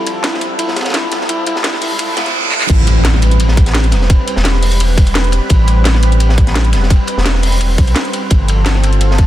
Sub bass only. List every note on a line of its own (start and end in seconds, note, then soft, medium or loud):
2.70 3.94 A1 loud
3.92 4.17 E1 medium
4.36 5.40 E1 medium
5.50 6.74 A1 loud
6.73 6.98 E1 medium
7.17 7.78 E1 medium
7.78 7.94 B1 loud
8.31 9.27 G1 loud